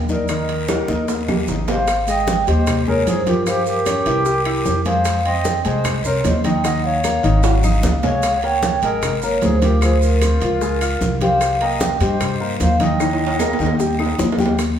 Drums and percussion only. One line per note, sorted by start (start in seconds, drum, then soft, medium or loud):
0.09 high bongo soft
0.09 high conga medium
0.09 short guiro medium
0.09 maracas soft
0.28 high bongo medium
0.28 high conga soft
0.28 high timbale medium
0.28 long guiro medium
0.28 claves medium
0.28 maracas medium
0.49 high bongo soft
0.49 high conga soft
0.49 high timbale medium
0.49 maracas soft
0.68 high bongo medium
0.68 high conga medium
0.68 high timbale medium
0.68 short guiro medium
0.68 claves medium
0.68 maracas medium
0.88 high bongo soft
0.88 high conga medium
0.88 short guiro medium
0.88 maracas soft
1.08 high bongo medium
1.08 high conga soft
1.08 low timbale medium
1.08 long guiro medium
1.08 maracas medium
1.28 high conga medium
1.28 low timbale medium
1.28 claves medium
1.28 maracas soft
1.47 high bongo soft
1.47 low bongo medium
1.47 low timbale medium
1.47 short guiro medium
1.47 maracas medium
1.68 high bongo soft
1.68 low conga medium
1.68 low timbale loud
1.68 short guiro medium
1.68 maracas soft
1.87 high bongo medium
1.87 high conga soft
1.87 high timbale medium
1.87 long guiro medium
1.87 claves medium
1.87 maracas medium
2.08 high bongo soft
2.08 high conga soft
2.08 high timbale medium
2.08 maracas medium
2.27 high bongo medium
2.27 high conga loud
2.27 short guiro medium
2.27 maracas medium
2.47 high bongo soft
2.47 high conga soft
2.47 high timbale medium
2.47 short guiro medium
2.47 maracas soft
2.67 high bongo medium
2.67 high conga soft
2.67 low conga medium
2.67 high timbale medium
2.67 long guiro medium
2.67 claves medium
2.67 maracas medium
2.87 high conga soft
2.87 low conga medium
3.07 high bongo soft
3.07 low bongo medium
3.07 high conga medium
3.07 high timbale medium
3.07 short guiro medium
3.07 maracas medium
3.26 high bongo soft
3.26 high conga medium
3.26 high timbale medium
3.26 short guiro medium
3.26 maracas soft
3.46 high bongo medium
3.46 high conga soft
3.46 high timbale medium
3.46 long guiro medium
3.46 claves medium
3.46 maracas medium
3.66 high bongo soft
3.66 high conga soft
3.66 maracas medium
3.86 high bongo medium
3.86 high conga medium
3.86 high timbale medium
3.86 short guiro medium
3.86 claves medium
3.86 maracas medium
4.06 high bongo soft
4.06 high conga soft
4.06 high timbale medium
4.06 short guiro medium
4.06 maracas soft
4.25 high bongo medium
4.25 high conga soft
4.25 long guiro medium
4.25 maracas medium
4.45 high conga soft
4.45 high timbale medium
4.45 claves medium
4.65 high bongo soft
4.65 low bongo medium
4.65 high conga medium
4.65 short guiro medium
4.65 maracas medium
4.85 high bongo soft
4.85 high conga medium
4.85 high timbale medium
4.85 short guiro medium
4.85 maracas soft
5.05 high bongo medium
5.05 high conga soft
5.05 high timbale medium
5.05 long guiro medium
5.05 claves medium
5.05 maracas medium
5.25 high bongo soft
5.25 high conga soft
5.25 high timbale medium
5.45 high bongo medium
5.45 high conga medium
5.45 short guiro medium
5.45 maracas medium
5.65 high bongo soft
5.65 high conga soft
5.65 high timbale medium
5.65 short guiro medium
5.65 maracas soft
5.84 high bongo medium
5.84 high conga soft
5.84 low conga medium
5.84 high timbale loud
5.84 long guiro medium
5.84 claves medium
5.84 maracas medium
6.04 high conga soft
6.04 low conga medium
6.04 maracas medium
6.24 high bongo soft
6.24 low bongo medium
6.24 high conga medium
6.24 high timbale medium
6.24 low timbale medium
6.24 short guiro medium
6.24 maracas medium
6.44 high bongo soft
6.44 high conga medium
6.44 high timbale medium
6.44 short guiro medium
6.44 maracas soft
6.64 high bongo medium
6.64 high conga soft
6.64 high timbale medium
6.64 long guiro medium
6.64 claves medium
6.64 maracas medium
6.84 high bongo soft
6.84 high conga soft
7.04 high bongo medium
7.04 high conga medium
7.04 high timbale medium
7.04 short guiro medium
7.04 claves medium
7.04 maracas medium
7.23 high bongo soft
7.23 high conga soft
7.23 high timbale medium
7.23 short guiro medium
7.23 maracas soft
7.43 high bongo medium
7.43 high conga soft
7.43 high timbale loud
7.43 long guiro medium
7.43 maracas medium
7.63 high conga medium
7.63 claves medium
7.63 maracas medium
7.83 high bongo soft
7.83 low bongo medium
7.83 high conga loud
7.83 low timbale medium
7.83 short guiro medium
7.83 maracas medium
8.03 high bongo soft
8.03 low conga medium
8.03 low timbale medium
8.03 short guiro medium
8.03 maracas soft
8.23 high bongo medium
8.23 high conga soft
8.23 high timbale medium
8.23 long guiro medium
8.23 claves medium
8.23 maracas medium
8.43 high bongo soft
8.43 high conga soft
8.43 high timbale medium
8.62 high bongo medium
8.62 high conga loud
8.62 short guiro medium
8.62 maracas medium
8.82 high bongo soft
8.82 high conga soft
8.82 high timbale medium
8.82 short guiro medium
8.82 maracas soft
9.02 high bongo medium
9.02 high conga soft
9.02 low conga medium
9.02 high timbale medium
9.02 long guiro medium
9.02 claves medium
9.02 maracas medium
9.22 high conga soft
9.22 maracas medium
9.41 high bongo soft
9.41 low bongo medium
9.41 high conga medium
9.41 high timbale medium
9.41 low timbale medium
9.41 short guiro medium
9.41 maracas medium
9.62 high bongo soft
9.62 high conga medium
9.62 high timbale medium
9.62 short guiro medium
9.62 maracas soft
9.81 high bongo medium
9.81 high conga soft
9.81 high timbale medium
9.81 long guiro medium
9.81 claves medium
9.81 maracas medium
10.02 high bongo soft
10.02 high conga soft
10.02 maracas medium
10.21 high bongo medium
10.21 high conga medium
10.21 high timbale medium
10.21 short guiro medium
10.21 claves medium
10.21 maracas medium
10.41 high bongo soft
10.41 high conga soft
10.41 high timbale medium
10.41 short guiro medium
10.41 maracas soft
10.61 high bongo medium
10.61 high conga soft
10.61 long guiro medium
10.61 maracas medium
10.81 high conga soft
10.81 high timbale medium
10.81 claves medium
10.81 maracas medium
11.01 high bongo soft
11.01 low bongo medium
11.01 high conga medium
11.01 short guiro medium
11.01 maracas medium
11.21 high bongo soft
11.21 high conga medium
11.21 high timbale medium
11.21 short guiro medium
11.21 maracas soft
11.40 high bongo medium
11.40 high conga soft
11.40 high timbale medium
11.40 long guiro medium
11.40 claves medium
11.40 maracas medium
11.61 high bongo soft
11.61 high conga soft
11.61 high timbale medium
11.80 high bongo medium
11.80 high conga loud
11.80 short guiro medium
11.80 maracas medium
12.00 high bongo soft
12.00 high conga soft
12.00 high timbale medium
12.00 short guiro medium
12.00 maracas soft
12.20 high bongo medium
12.20 high conga soft
12.20 low conga medium
12.20 high timbale medium
12.20 long guiro medium
12.20 claves medium
12.20 maracas medium
12.41 high conga soft
12.60 high bongo soft
12.60 low bongo medium
12.60 high conga medium
12.60 high timbale medium
12.60 short guiro medium
12.60 maracas medium
12.80 high bongo soft
12.80 high conga medium
12.80 high timbale medium
12.80 short guiro medium
12.80 maracas soft
13.00 high bongo medium
13.00 high conga soft
13.00 high timbale medium
13.00 long guiro medium
13.00 claves medium
13.00 maracas medium
13.13 high timbale medium
13.20 high bongo soft
13.20 high conga soft
13.27 high timbale medium
13.39 high bongo medium
13.39 high conga medium
13.39 low timbale medium
13.39 short guiro medium
13.39 claves medium
13.39 maracas medium
13.53 low timbale medium
13.59 high bongo soft
13.59 high conga soft
13.59 short guiro medium
13.59 maracas soft
13.66 low timbale medium
13.79 high bongo loud
13.79 high conga soft
13.79 long guiro medium
13.79 maracas medium
13.99 high bongo medium
13.99 high conga soft
13.99 claves medium
14.06 low timbale medium
14.18 low bongo loud
14.18 high conga medium
14.18 short guiro medium
14.18 maracas medium
14.32 low timbale medium
14.38 low bongo medium
14.38 high conga medium
14.38 short guiro medium
14.38 maracas soft
14.46 low timbale loud
14.59 high bongo medium
14.59 high conga soft
14.59 high timbale medium
14.59 long guiro medium
14.59 claves medium
14.59 maracas medium